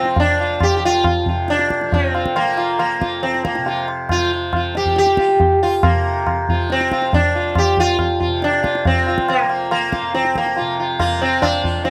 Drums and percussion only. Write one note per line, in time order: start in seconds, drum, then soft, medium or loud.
0.05 tabla te medium
0.16 tabla tin medium
0.16 tabla ge medium
0.60 tabla na medium
0.60 tabla ge medium
1.04 tabla na medium
1.04 tabla ge medium
1.26 tabla ge medium
1.48 tabla te medium
1.59 tabla te medium
1.70 tabla ke medium
1.81 tabla te medium
1.92 tabla tin medium
1.92 tabla ge medium
2.15 tabla na medium
2.26 tabla ke medium
2.36 tabla na medium
2.58 tabla na medium
2.79 tabla na medium
3.02 tabla ke medium
3.23 tabla te medium
3.34 tabla te medium
3.45 tabla ke medium
3.55 tabla te medium
3.66 tabla tin medium
3.88 tabla na medium
4.09 tabla na medium
4.09 tabla ge medium
4.53 tabla na medium
4.53 tabla ge medium
4.75 tabla te medium
4.86 tabla ge medium
4.96 tabla te medium
5.07 tabla te medium
5.17 tabla ke medium
5.29 tabla te medium
5.40 tabla tin medium
5.40 tabla ge medium
5.83 tabla na medium
5.83 tabla ge medium
6.27 tabla na medium
6.27 tabla ge medium
6.49 tabla ge medium
6.70 tabla te medium
6.81 tabla te medium
6.92 tabla ke medium
7.02 tabla te medium
7.13 tabla tin medium
7.13 tabla ge medium
7.55 tabla na medium
7.55 tabla ge medium
7.77 tabla ge soft
7.99 tabla na medium
7.99 tabla ge medium
8.21 tabla ge soft
8.42 tabla te medium
8.53 tabla te medium
8.64 tabla ke medium
8.75 tabla te medium
8.85 tabla tin medium
8.85 tabla ge medium
9.06 tabla na medium
9.18 tabla ke medium
9.29 tabla na medium
9.50 tabla na medium
9.71 tabla na medium
9.93 tabla ke medium
10.14 tabla te medium
10.25 tabla te medium
10.35 tabla ke medium
10.46 tabla te medium
10.57 tabla tin medium
11.00 tabla na medium
11.00 tabla ge medium
11.42 tabla na medium
11.42 tabla ge medium
11.64 tabla ge medium
11.85 tabla te medium